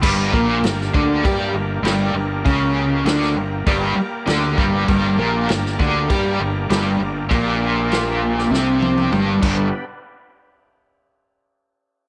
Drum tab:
CC |x---x---x---x---|x---x---x---x---|x---x---x---x---|x---x---------x-|
SD |----oo------o---|----oo------o---|----oo------o---|----o--oo-------|
T1 |----------------|----------------|----------------|----------oo----|
T2 |----------------|----------------|----------------|------------o---|
BD |o-o---o-o-------|o-------o-----o-|o-----o-o-------|o-------------o-|

CC |----------------|
SD |----------------|
T1 |----------------|
T2 |----------------|
BD |----------------|